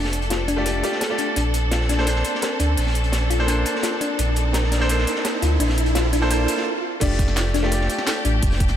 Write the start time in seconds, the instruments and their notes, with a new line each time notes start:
Already playing: sub bass F1, grand piano A3 F4 G4 D5, string section D4 G4 A4, riser
0.05 snare
0.12 closed hi-hat
0.22 closed hi-hat
0.30 synth arpeggio sound F4, snare, closed hi-hat
0.48 synth arpeggio sound D4, closed hi-hat
0.56 grand piano A3 F4 G4 D5
0.65 grand piano A3 F4 G4 D5, closed hi-hat
0.83 grand piano A3 F4 G4 D5, synth arpeggio sound G4, closed hi-hat
0.92 snare
1.01 synth arpeggio sound A4, snare, closed hi-hat
1.10 grand piano A3 F4 G4 D5
1.18 synth arpeggio sound D4, closed hi-hat
1.36 sub bass A#1, string section C4, synth arpeggio sound D4, closed hi-hat
1.54 closed hi-hat
1.71 synth arpeggio sound F4, snare, closed hi-hat
1.81 snare
1.89 synth arpeggio sound D4, snare, closed hi-hat
1.97 grand piano A#3 D4 A4 C5, snare
2.06 grand piano A#3 D4 A4 C5, closed hi-hat
2.16 snare
2.25 closed hi-hat
2.35 snare
2.42 synth arpeggio sound A#4, snare, closed hi-hat
2.59 sub bass D2, synth arpeggio sound D4, closed hi-hat
2.78 sub bass A#1, closed hi-hat, open hi-hat
2.87 snare
2.95 closed hi-hat
3.04 closed hi-hat
3.12 snare, closed hi-hat
3.30 synth arpeggio sound F4, closed hi-hat
3.39 grand piano A#3 D4 A4 C5
3.47 grand piano A#3 D4 A4 C5, synth arpeggio sound D4, closed hi-hat
3.65 closed hi-hat
3.75 snare
3.83 synth arpeggio sound F4, snare, closed hi-hat
4.01 synth arpeggio sound D4, closed hi-hat
4.19 sub bass A#1, closed hi-hat
4.36 closed hi-hat
4.53 synth arpeggio sound A#4, snare, closed hi-hat
4.63 snare
4.72 synth arpeggio sound D4, snare, closed hi-hat
4.80 grand piano A#3 D4 A4 C5, snare
4.88 grand piano A#3 D4 A4 C5, closed hi-hat
4.98 snare
5.07 closed hi-hat
5.16 snare
5.25 snare, closed hi-hat
5.42 sub bass D2, synth arpeggio sound F4, closed hi-hat
5.60 sub bass A#1, synth arpeggio sound D4, closed hi-hat, open hi-hat
5.69 snare
5.78 closed hi-hat
5.86 closed hi-hat
5.95 synth arpeggio sound F4, snare, closed hi-hat
6.13 synth arpeggio sound D4, closed hi-hat
6.21 grand piano A#3 D4 A4 C5
6.29 grand piano A#3 D4 A4 C5, closed hi-hat
6.48 closed hi-hat
6.57 snare
7.00 sub bass F1, grand piano A3 F4 G4 D5, string section A3 D4 G4, synth arpeggio sound D4, kick, closed hi-hat, crash
7.19 kick, closed hi-hat
7.28 snare
7.36 synth arpeggio sound F4, snare, closed hi-hat
7.45 snare
7.54 synth arpeggio sound D4, snare, closed hi-hat
7.62 grand piano A3 F4 G4 D5, snare
7.71 grand piano A3 F4 G4 D5, closed hi-hat
7.81 snare
7.90 closed hi-hat
7.98 snare
8.07 synth arpeggio sound A4, snare, closed hi-hat
8.25 sub bass A1, synth arpeggio sound D4, closed hi-hat
8.43 sub bass F1, kick, closed hi-hat, open hi-hat
8.52 snare
8.60 kick, closed hi-hat
8.68 snare, closed hi-hat